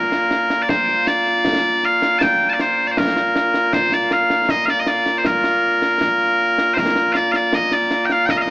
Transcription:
Already playing: A#2 A#3 F4 A#4
0.12 snare
0.31 snare
0.50 snare
0.62 D5
0.69 C5, concert bass drum, snare
0.88 snare
1.07 D5, snare
1.26 snare
1.45 concert bass drum, snare
1.83 F5, snare
2.02 snare
2.19 G5 A5, concert bass drum, snare
2.49 D5 A5
2.59 C5, snare
2.87 D5
2.91 C5
2.97 A#4, concert bass drum, snare
3.16 snare
3.36 snare
3.54 snare
3.73 C5, concert bass drum, snare
3.92 D5, snare
4.11 F5, snare
4.30 snare
4.49 D#5, concert bass drum, snare
4.65 F5, snare
4.70 D5
4.80 D#5
4.87 D5, snare
5.06 snare
5.18 C5
5.25 A#4, concert bass drum, snare
5.44 snare
5.82 snare
6.01 concert bass drum, snare
6.58 snare
6.74 C5, concert bass drum, snare
6.78 A#4
6.96 snare
7.13 D5 F5, snare
7.32 F5, snare
7.36 D5
7.53 D#5, concert bass drum, snare
7.72 D5, snare
7.91 snare
8.05 G5
8.10 F5, snare
8.26 G5, concert bass drum, snare
8.30 D#5
8.37 F5
8.41 D#5

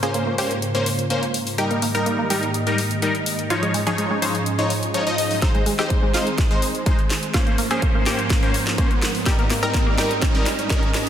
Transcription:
Already playing: G#2 C#3 A#3 F4 C5, riser
0.03 A#3 C#4 G#4 C5, closed hi-hat
0.14 A#3, closed hi-hat
0.27 A#3
0.38 A#3 C#4 G4 C5, open hi-hat
0.51 closed hi-hat
0.62 closed hi-hat
0.75 A#3 C#4 C5, closed hi-hat
0.86 open hi-hat
0.99 closed hi-hat
1.10 A#3 C#4 C5, closed hi-hat
1.23 closed hi-hat
1.34 open hi-hat
1.47 open hi-hat
1.58 G#2 D#3 G3 D#4 G4 A#4 D#5, closed hi-hat
1.71 A#3, closed hi-hat
1.82 A#3, open hi-hat
1.95 G3 D#4 A#4, closed hi-hat
2.06 A#3, closed hi-hat
2.19 A#3
2.30 G3 D#4 G4 A#4, open hi-hat
2.43 closed hi-hat
2.54 closed hi-hat
2.67 G3 D#4 A#4, closed hi-hat
2.78 open hi-hat
2.91 closed hi-hat
3.02 G3 D#4 A#4, closed hi-hat
3.15 closed hi-hat
3.26 open hi-hat
3.39 closed hi-hat
3.50 G#2 F3 C#4 D#4 F4 G#4 C#5, closed hi-hat
3.63 G#3, closed hi-hat
3.74 G#3, open hi-hat
3.87 F3 D#4 G#4 C#5, closed hi-hat
3.98 G#3, closed hi-hat
4.11 G#3
4.22 F3 D#4 C5 C#5, open hi-hat
4.35 closed hi-hat
4.46 closed hi-hat
4.59 F3 D#4 C#5, closed hi-hat
4.70 open hi-hat
4.83 closed hi-hat
4.94 F3 D#4 C#5, closed hi-hat
5.07 F3 D#4 D#5, closed hi-hat
5.18 open hi-hat
5.31 open hi-hat
5.42 D#3 G#3 C4 D#4 G#4 C5, kick, snare, closed hi-hat, high woodblock
5.55 G#3, closed hi-hat
5.66 G#3, open hi-hat
5.79 G#3 D#4 G4 C5, snare, closed hi-hat, high woodblock
5.90 G#3, kick, closed hi-hat
6.03 G#3
6.14 G#3 D#4 F4 C5, snare, open hi-hat
6.27 closed hi-hat
6.38 kick, snare, closed hi-hat
6.51 G#3 D#4 C5, closed hi-hat
6.62 open hi-hat
6.75 closed hi-hat
6.86 G#3 D#4 C5, kick, closed hi-hat
6.99 closed hi-hat
7.10 snare, open hi-hat
7.23 closed hi-hat
7.34 G#2 F3 A#3 C#4 F4 A#4 C5, kick, snare, closed hi-hat, high woodblock
7.47 A#3, closed hi-hat
7.58 A#3, open hi-hat
7.71 A#3 C#4 G#4 C5, closed hi-hat, high woodblock
7.82 A#3, kick, closed hi-hat
7.95 A#3
8.06 A#3 C#4 G4 C5, snare, open hi-hat
8.19 closed hi-hat
8.30 kick, snare, closed hi-hat
8.43 A#3 C#4 C5, closed hi-hat
8.54 open hi-hat
8.67 snare, closed hi-hat
8.78 A#3 C#4 C5, kick, closed hi-hat
8.91 closed hi-hat
9.02 snare, open hi-hat
9.15 open hi-hat
9.26 G3 D#4 G4 A#4 D#5, kick, snare, closed hi-hat, high woodblock
9.39 A#3, closed hi-hat
9.50 A#3, snare, open hi-hat
9.63 G3 D#4 A#4, closed hi-hat, high woodblock
9.74 A#3, kick, snare, closed hi-hat
9.87 A#3
9.98 G3 D#4 G4 A#4, snare, open hi-hat
10.11 closed hi-hat
10.22 kick, snare, closed hi-hat
10.35 G3 D#4 A#4, closed hi-hat
10.46 snare, open hi-hat
10.59 closed hi-hat
10.70 G3 D#4 A#4, kick, snare, closed hi-hat
10.83 closed hi-hat
10.94 snare, open hi-hat

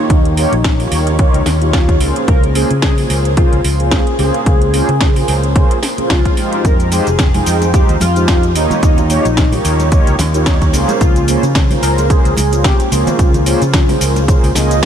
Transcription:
Already playing: A#3 D#4 F4 G4 C#5
0.10 D#2, kick, closed hi-hat
0.25 closed hi-hat
0.37 A#3 D#4 F4 G4 C#5, open hi-hat
0.52 A#1, closed hi-hat
0.64 kick, snare, closed hi-hat
0.80 A#3 D#4 F4 G4 C#5, open hi-hat
0.92 D#2, open hi-hat
1.07 closed hi-hat
1.19 A#3 D#4 F4 G4 C#5, kick, closed hi-hat
1.34 C#2, closed hi-hat
1.46 D#2, snare, open hi-hat
1.61 A#3 D#4 F4 G4 C#5, closed hi-hat
1.73 F4, kick, snare, closed hi-hat
1.89 kick, closed hi-hat
2.00 C#2 A#3 C#4 F4 G#4 C5, open hi-hat
2.16 closed hi-hat
2.28 C#2 A#4, kick, closed hi-hat
2.44 closed hi-hat
2.55 A#3 C#4 F4 G#4 C5, open hi-hat
2.71 C#3, closed hi-hat
2.82 G#4, kick, snare, closed hi-hat
2.97 A#3 C#4 F4 G#4 C5, open hi-hat
3.10 C#2, open hi-hat
3.25 closed hi-hat
3.37 A#3 C#4 F4 G#4 C5, kick, closed hi-hat
3.52 C#2, closed hi-hat
3.64 C#2, open hi-hat
3.79 A#3 C#4 F4 G#4 C5, closed hi-hat
3.91 G#4, kick, snare, closed hi-hat
4.07 closed hi-hat
4.18 C#2 A#3 C#4 F4 G#4 C5, open hi-hat
4.34 closed hi-hat
4.46 C#2, kick, closed hi-hat
4.62 closed hi-hat
4.73 A#3 C#4 F4 G#4 C5, open hi-hat
4.89 C#3, closed hi-hat
5.01 kick, snare, closed hi-hat
5.15 A#3 C#4 F4 G#4 C5, open hi-hat
5.28 C#2, open hi-hat
5.43 closed hi-hat
5.55 A#3 C#4 F4 G#4 C5, kick, closed hi-hat
5.71 closed hi-hat
5.83 snare, open hi-hat
5.97 A#3 C#4 F4 G#4 C5, muted fingered electric bass stroke, closed hi-hat
6.10 C#2 F4, kick, snare, closed hi-hat
6.25 kick, closed hi-hat
6.36 G#3 D#4 F4 G4 C5, open hi-hat
6.53 closed hi-hat
6.65 F2 A#4, kick, closed hi-hat, shaker
6.80 closed hi-hat, shaker
6.91 G#3 D#4 F4 G4 G#4 C5, open hi-hat, shaker
7.07 F1, closed hi-hat, shaker
7.19 kick, snare, closed hi-hat, low conga, shaker
7.34 G#3 D#4 F4 C5 G5, open hi-hat, high conga, shaker
7.46 F2, open hi-hat, shaker
7.62 closed hi-hat, muted conga, shaker
7.73 G#3 D#4 F4 G4 C5, kick, closed hi-hat, shaker
7.89 D#2, closed hi-hat, shaker
8.00 F2 F4, open hi-hat, muted conga, high conga, shaker
8.15 G#3 D#4 F4 G4 C5, closed hi-hat, shaker
8.28 kick, snare, closed hi-hat, shaker
8.43 closed hi-hat, shaker
8.55 D#2 A#3 D#4 F4 G4 C#5, open hi-hat, shaker
8.71 closed hi-hat, high conga, low conga, shaker
8.83 D#2, kick, closed hi-hat, shaker
8.98 closed hi-hat, low conga, shaker
9.09 A#3 D#4 F4 G4 C#5, open hi-hat, shaker
9.25 A#1, closed hi-hat, shaker
9.37 kick, snare, closed hi-hat, low conga, shaker
9.52 A#3 D#4 F4 G4 C#5, open hi-hat, high conga, shaker
9.65 D#2, open hi-hat, shaker
9.80 closed hi-hat, muted conga, shaker
9.92 A#3 D#4 F4 G4 C#5, kick, closed hi-hat, shaker
10.07 C#2, closed hi-hat, shaker
10.19 D#2, snare, open hi-hat, high conga, shaker
10.34 A#3 D#4 F4 G4 C#5, closed hi-hat, shaker
10.46 kick, snare, closed hi-hat, shaker
10.62 kick, closed hi-hat, shaker
10.73 C#2 A#3 C#4 F4 G#4 C5, open hi-hat, muted conga, shaker
10.88 closed hi-hat, high conga, shaker
11.01 C#2 F4, kick, closed hi-hat, shaker
11.16 closed hi-hat, shaker
11.27 A#3 C#4 F4 G#4 C5, open hi-hat, shaker
11.43 C#3, closed hi-hat, shaker
11.55 kick, snare, closed hi-hat, low conga, shaker
11.70 A#3 C#4 F4 G#4 C5, open hi-hat, high conga, shaker
11.82 C#2 A#4, open hi-hat, shaker
11.98 closed hi-hat, muted conga, shaker
12.09 A#3 C#4 F4 G#4 C5, kick, closed hi-hat, shaker
12.25 C#2, closed hi-hat, shaker
12.37 C#2, open hi-hat, muted conga, high conga, shaker
12.51 A#3 C#4 F4 G#4 C5, closed hi-hat, shaker
12.64 G4, kick, snare, closed hi-hat, shaker
12.80 closed hi-hat, shaker
12.91 C#2 A#3 C#4 F4 G#4 C5, open hi-hat, shaker
13.07 closed hi-hat, high conga, low conga, shaker
13.19 C#2, kick, closed hi-hat, shaker
13.34 closed hi-hat, low conga, shaker
13.45 A#3 C#4 F4 G#4 C5, open hi-hat, shaker
13.62 C#3, closed hi-hat, shaker
13.74 kick, snare, closed hi-hat, low conga, shaker
13.88 A#3 C#4 F4 G#4 C5, open hi-hat, high conga, shaker
14.01 C#2, open hi-hat, shaker
14.16 closed hi-hat, muted conga, shaker
14.28 A#3 C#4 F4 G#4 C5, kick, closed hi-hat, shaker
14.43 C#2, open hi-hat, shaker
14.55 C#2 A#3 C#4 F4 G#4 D#5, snare, open hi-hat, high conga, shaker
14.71 closed hi-hat, shaker

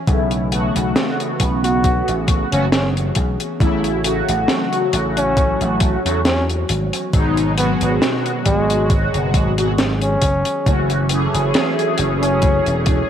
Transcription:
Already playing: E3 A3 F#4
0.07 B1 C#3 A3 B3 C#4 E4, kick, closed hi-hat
0.31 closed hi-hat
0.50 C#3 A3 B3 F#4, closed hi-hat
0.76 B1, closed hi-hat
0.96 snare, closed hi-hat
1.20 closed hi-hat
1.40 B1, kick, closed hi-hat
1.64 F#4, closed hi-hat
1.84 G#4, kick, closed hi-hat
2.08 A1, closed hi-hat
2.28 kick, closed hi-hat
2.51 F#1 C#3 A3 B3 C#4 F#4, closed hi-hat
2.72 C#4, snare, closed hi-hat
2.97 closed hi-hat
3.15 B1, kick, closed hi-hat
3.40 closed hi-hat
3.59 A1 C#3 F#3 A3 E4 F#4, kick, closed hi-hat
3.84 closed hi-hat
4.02 C#3 F#3 A3 F#4, closed hi-hat
4.29 A1, closed hi-hat
4.48 snare, closed hi-hat
4.73 closed hi-hat
4.93 A1, closed hi-hat
5.17 C#4, closed hi-hat
5.37 kick, closed hi-hat
5.61 A1, closed hi-hat
5.80 kick, closed hi-hat
6.04 E2 C#3 F#3 A3 F#4, closed hi-hat
6.25 C#4, snare, closed hi-hat
6.49 closed hi-hat
6.69 G#1 D#3 G#3 B3, closed hi-hat
6.93 closed hi-hat
7.12 G#1 B2 F#3 G#3 D#4, kick, closed hi-hat
7.37 closed hi-hat
7.56 B2 F#3 G#3 B3 F#4, closed hi-hat
7.81 G#1 B3, closed hi-hat
8.02 snare, closed hi-hat
8.26 closed hi-hat
8.45 G#1 G#3 G#4, kick, closed hi-hat
8.70 closed hi-hat
8.90 kick, closed hi-hat
9.14 F#1, closed hi-hat
9.34 G#1, kick, closed hi-hat
9.57 B2 F#3 G#3 F#4, closed hi-hat
9.78 snare, closed hi-hat
10.02 C#4, closed hi-hat
10.22 F#1, kick, closed hi-hat
10.45 closed hi-hat
10.65 F#1 E3 F#3 A3 C#4 F#4, kick, closed hi-hat
10.90 closed hi-hat
11.09 E3 A3 C#4 G#4, closed hi-hat
11.34 F#1, closed hi-hat
11.54 snare, closed hi-hat
11.79 closed hi-hat
11.98 F#1, closed hi-hat
12.22 C#4, closed hi-hat
12.42 kick, closed hi-hat
12.66 E1, closed hi-hat
12.86 kick, closed hi-hat

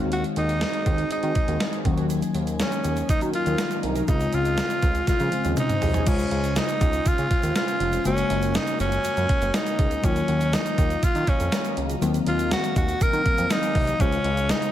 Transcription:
Already playing: D#2 D#3 G#3 C4 D#4 F#4 G#4 C5 G#5
0.12 F#4, closed hi-hat
0.24 closed hi-hat
0.36 D#2 D#4, closed hi-hat
0.49 closed hi-hat
0.61 snare, closed hi-hat
0.73 closed hi-hat
0.86 D#2, kick, closed hi-hat
0.98 closed hi-hat
1.11 D#3 D#4, closed hi-hat
1.23 D#3 C4 F#4, closed hi-hat
1.35 kick, closed hi-hat
1.48 D#2 D#3 C4 F#4, closed hi-hat
1.60 snare, closed hi-hat
1.73 closed hi-hat
1.84 D#2 D#3 F#3 A#3 C#4 D#4 F#4 A#4 D#5, kick, closed hi-hat
1.98 closed hi-hat
2.10 closed hi-hat, shaker
2.22 closed hi-hat, shaker
2.35 D#2, closed hi-hat
2.47 closed hi-hat, shaker
2.59 C#4, snare, closed hi-hat, shaker
2.72 closed hi-hat, shaker
2.84 D#2, closed hi-hat, shaker
2.97 closed hi-hat, shaker
3.09 D#3 D#4, kick, closed hi-hat, shaker
3.21 D#3 C#4 F#4, closed hi-hat, shaker
3.33 F4, closed hi-hat
3.46 D#2 F#3 D#4 A#4, closed hi-hat, shaker
3.58 snare, closed hi-hat, shaker
3.71 closed hi-hat, shaker
3.83 C2 F#3 D#4 A#4, closed hi-hat
3.96 closed hi-hat, shaker
4.07 C#2 C#3 G#3 C4 D#4 F4 C5 G#5, kick, closed hi-hat, shaker
4.20 closed hi-hat, shaker
4.33 C#2 F4, closed hi-hat, shaker
4.45 closed hi-hat, shaker
4.58 snare, closed hi-hat, shaker
4.70 closed hi-hat, shaker
4.82 C#2, kick, closed hi-hat, shaker
4.95 closed hi-hat, shaker
5.07 C#3 F4, kick, snare, closed hi-hat, shaker
5.20 C#3 F3 C#4 G#4, closed hi-hat, shaker
5.32 C#3 G#3 C4 F4, closed hi-hat, shaker
5.44 D#2 F3 C#4 G#4, closed hi-hat, shaker
5.57 D#4, closed hi-hat, mid tom, shaker
5.69 closed hi-hat, mid tom, shaker
5.82 C2 F3 C#4 G#4, floor tom, open hi-hat, shaker
5.94 closed hi-hat, floor tom, shaker
6.06 C#2 C#3 G#3 C#4 F4 C5 G#5, kick, closed hi-hat, crash, shaker
6.19 closed hi-hat, shaker
6.31 C#2, closed hi-hat
6.44 closed hi-hat, shaker
6.56 D#4, snare, closed hi-hat, shaker
6.68 closed hi-hat, shaker
6.81 C#2, kick, closed hi-hat, shaker
6.93 closed hi-hat, shaker
7.06 C#3 F4, kick, closed hi-hat, shaker
7.18 C#3, closed hi-hat, shaker
7.31 kick, closed hi-hat
7.43 D#2, closed hi-hat, shaker
7.56 F4, snare, closed hi-hat, shaker
7.68 closed hi-hat, shaker
7.80 F1, closed hi-hat
7.93 closed hi-hat, shaker
8.05 F#1 C#3 G#3 A#3 C#4 F#4 A#4, closed hi-hat, shaker
8.17 closed hi-hat, shaker
8.30 F#1, closed hi-hat
8.42 closed hi-hat, shaker
8.54 D#4, snare, closed hi-hat, shaker
8.67 closed hi-hat, shaker
8.80 F#1 C#4, closed hi-hat, shaker
8.92 closed hi-hat, shaker
9.04 F#2, closed hi-hat, shaker
9.17 F#2, closed hi-hat, shaker
9.29 kick, closed hi-hat
9.42 F#1, closed hi-hat, shaker
9.54 D#4, snare, closed hi-hat, shaker
9.66 closed hi-hat, shaker
9.79 C#2, kick, closed hi-hat
9.91 closed hi-hat, shaker
10.02 D#2 D#3 F#3 A#3 C#4 F4 D#5 F5 A#5, kick, closed hi-hat, shaker
10.16 closed hi-hat, shaker
10.28 D#2, closed hi-hat
10.41 closed hi-hat, shaker
10.53 D#4, snare, closed hi-hat, shaker
10.66 closed hi-hat, shaker
10.78 D#2, kick, closed hi-hat, shaker
10.90 closed hi-hat, shaker
11.03 D#3 F4, kick, closed hi-hat, shaker
11.15 D#3, closed hi-hat, shaker
11.27 C#4, kick, closed hi-hat
11.40 F2, closed hi-hat, shaker
11.52 snare, closed hi-hat, shaker
11.65 closed hi-hat, shaker
11.77 C#2, closed hi-hat
11.90 closed hi-hat, shaker
12.01 D#2 D#3 F#3 A#3 C4 G#5, closed hi-hat, shaker
12.14 closed hi-hat, shaker
12.27 D#2 F4, closed hi-hat
12.39 closed hi-hat, shaker
12.51 F#4, snare, closed hi-hat, shaker
12.64 closed hi-hat, shaker
12.76 D#2 F#4, kick, closed hi-hat, shaker
12.88 closed hi-hat, shaker
13.01 D#3 A#4, kick, closed hi-hat, shaker
13.13 D#3, closed hi-hat, shaker
13.26 kick, closed hi-hat
13.38 F2, closed hi-hat, shaker
13.50 D#4, snare, closed hi-hat, shaker
13.63 closed hi-hat, shaker
13.75 C2, kick, open hi-hat
13.87 closed hi-hat, shaker
13.99 C#2 C#3 G#3 C#4 F4 G#4 C5 C6, kick, closed hi-hat, shaker
14.12 closed hi-hat, shaker
14.24 C#2, closed hi-hat
14.37 closed hi-hat, shaker
14.49 D#4, snare, closed hi-hat, shaker
14.62 closed hi-hat, shaker

